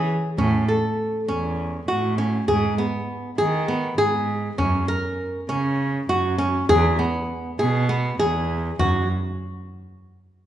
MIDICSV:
0, 0, Header, 1, 4, 480
1, 0, Start_track
1, 0, Tempo, 600601
1, 304, Time_signature, 7, 3, 24, 8
1, 8361, End_track
2, 0, Start_track
2, 0, Title_t, "Nylon-string guitar"
2, 0, Program_c, 0, 24
2, 0, Note_on_c, 0, 68, 74
2, 230, Note_off_c, 0, 68, 0
2, 307, Note_on_c, 0, 61, 73
2, 509, Note_off_c, 0, 61, 0
2, 547, Note_on_c, 0, 69, 60
2, 953, Note_off_c, 0, 69, 0
2, 1026, Note_on_c, 0, 61, 69
2, 1434, Note_off_c, 0, 61, 0
2, 1503, Note_on_c, 0, 66, 74
2, 1708, Note_off_c, 0, 66, 0
2, 1743, Note_on_c, 0, 61, 70
2, 1948, Note_off_c, 0, 61, 0
2, 1982, Note_on_c, 0, 68, 79
2, 2188, Note_off_c, 0, 68, 0
2, 2224, Note_on_c, 0, 59, 63
2, 2633, Note_off_c, 0, 59, 0
2, 2703, Note_on_c, 0, 68, 77
2, 2908, Note_off_c, 0, 68, 0
2, 2943, Note_on_c, 0, 59, 71
2, 3149, Note_off_c, 0, 59, 0
2, 3181, Note_on_c, 0, 68, 80
2, 3591, Note_off_c, 0, 68, 0
2, 3662, Note_on_c, 0, 61, 77
2, 3868, Note_off_c, 0, 61, 0
2, 3902, Note_on_c, 0, 70, 69
2, 4312, Note_off_c, 0, 70, 0
2, 4386, Note_on_c, 0, 61, 73
2, 4794, Note_off_c, 0, 61, 0
2, 4869, Note_on_c, 0, 66, 81
2, 5072, Note_off_c, 0, 66, 0
2, 5102, Note_on_c, 0, 61, 76
2, 5308, Note_off_c, 0, 61, 0
2, 5348, Note_on_c, 0, 68, 93
2, 5552, Note_off_c, 0, 68, 0
2, 5585, Note_on_c, 0, 59, 64
2, 5993, Note_off_c, 0, 59, 0
2, 6067, Note_on_c, 0, 68, 72
2, 6271, Note_off_c, 0, 68, 0
2, 6306, Note_on_c, 0, 59, 78
2, 6510, Note_off_c, 0, 59, 0
2, 6549, Note_on_c, 0, 68, 81
2, 6955, Note_off_c, 0, 68, 0
2, 7028, Note_on_c, 0, 66, 75
2, 7250, Note_off_c, 0, 66, 0
2, 8361, End_track
3, 0, Start_track
3, 0, Title_t, "Cello"
3, 0, Program_c, 1, 42
3, 304, Note_on_c, 1, 45, 96
3, 524, Note_off_c, 1, 45, 0
3, 1023, Note_on_c, 1, 40, 75
3, 1473, Note_off_c, 1, 40, 0
3, 1506, Note_on_c, 1, 45, 74
3, 1955, Note_off_c, 1, 45, 0
3, 1985, Note_on_c, 1, 44, 99
3, 2205, Note_off_c, 1, 44, 0
3, 2705, Note_on_c, 1, 51, 80
3, 3155, Note_off_c, 1, 51, 0
3, 3185, Note_on_c, 1, 44, 81
3, 3635, Note_off_c, 1, 44, 0
3, 3668, Note_on_c, 1, 42, 99
3, 3887, Note_off_c, 1, 42, 0
3, 4388, Note_on_c, 1, 49, 85
3, 4836, Note_off_c, 1, 49, 0
3, 4867, Note_on_c, 1, 42, 82
3, 5316, Note_off_c, 1, 42, 0
3, 5353, Note_on_c, 1, 40, 106
3, 5570, Note_off_c, 1, 40, 0
3, 6071, Note_on_c, 1, 47, 90
3, 6517, Note_off_c, 1, 47, 0
3, 6549, Note_on_c, 1, 40, 85
3, 6996, Note_off_c, 1, 40, 0
3, 7031, Note_on_c, 1, 42, 93
3, 7252, Note_off_c, 1, 42, 0
3, 8361, End_track
4, 0, Start_track
4, 0, Title_t, "Frame drum"
4, 304, Note_on_c, 9, 64, 55
4, 384, Note_off_c, 9, 64, 0
4, 1028, Note_on_c, 9, 64, 37
4, 1107, Note_off_c, 9, 64, 0
4, 1504, Note_on_c, 9, 64, 40
4, 1584, Note_off_c, 9, 64, 0
4, 1988, Note_on_c, 9, 64, 50
4, 2068, Note_off_c, 9, 64, 0
4, 2706, Note_on_c, 9, 64, 41
4, 2786, Note_off_c, 9, 64, 0
4, 3185, Note_on_c, 9, 64, 42
4, 3265, Note_off_c, 9, 64, 0
4, 3665, Note_on_c, 9, 64, 59
4, 3745, Note_off_c, 9, 64, 0
4, 4389, Note_on_c, 9, 64, 41
4, 4469, Note_off_c, 9, 64, 0
4, 4874, Note_on_c, 9, 64, 49
4, 4954, Note_off_c, 9, 64, 0
4, 5349, Note_on_c, 9, 64, 67
4, 5429, Note_off_c, 9, 64, 0
4, 6072, Note_on_c, 9, 64, 50
4, 6152, Note_off_c, 9, 64, 0
4, 6315, Note_on_c, 9, 64, 21
4, 6395, Note_off_c, 9, 64, 0
4, 6551, Note_on_c, 9, 64, 52
4, 6631, Note_off_c, 9, 64, 0
4, 7029, Note_on_c, 9, 64, 85
4, 7109, Note_off_c, 9, 64, 0
4, 8361, End_track
0, 0, End_of_file